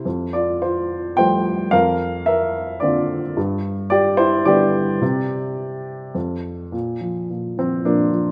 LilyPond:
<<
  \new Staff \with { instrumentName = "Upright piano" } { \time 3/4 \key f \major \tempo 4 = 109 r8 <f' d''>8 <f' c''>4 <c'' g''>4 | <bes' f''>4 <bes' e''>4 <f' d''>8. r16 | r4 <g' d''>8 <e' c''>8 <g' d''>4~ | <g' d''>2 r4 |
\key bes \major r4. c'8 <f bes d'>4 | }
  \new Staff \with { instrumentName = "Upright piano" } { \clef bass \time 3/4 \key f \major f,2 <f g a>4 | f,2 <d bes c'>4 | g,2 <d g b>4 | c2 f,4 |
\key bes \major bes,8 f8 bes,8 f8 bes,8 f8 | }
>>